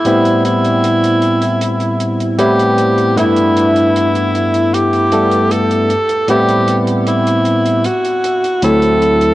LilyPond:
<<
  \new Staff \with { instrumentName = "Alto saxophone" } { \time 4/4 \key a \dorian \tempo 4 = 77 e'8 e'2 r8 g'4 | e'2 g'4 a'4 | g'8 r8 e'4 fis'4 a'4 | }
  \new Staff \with { instrumentName = "Tine electric piano" } { \time 4/4 \key a \dorian <a, g b c' e'>2. <a, g b c' e'>4 | <g, a b d' e'>2~ <g, a b d' e'>8 <g, a b d' a'>4 r8 | <a, g b c' e'>2 r4 <d, fis a c' e'>4 | }
  \new DrumStaff \with { instrumentName = "Drums" } \drummode { \time 4/4 hh16 hh16 hh16 hh16 hh16 hh16 hh16 hh16 hh16 hh16 hh16 hh16 hh16 hh16 hh16 hh16 | hh16 hh16 hh16 hh16 hh16 hh16 hh16 hh16 hh16 hh16 hh16 hh16 hh16 hh16 hh16 hh16 | hh16 hh16 hh16 hh16 hh16 hh16 hh16 hh16 hh16 hh16 hh16 hh16 hh16 hh16 hh16 hh16 | }
>>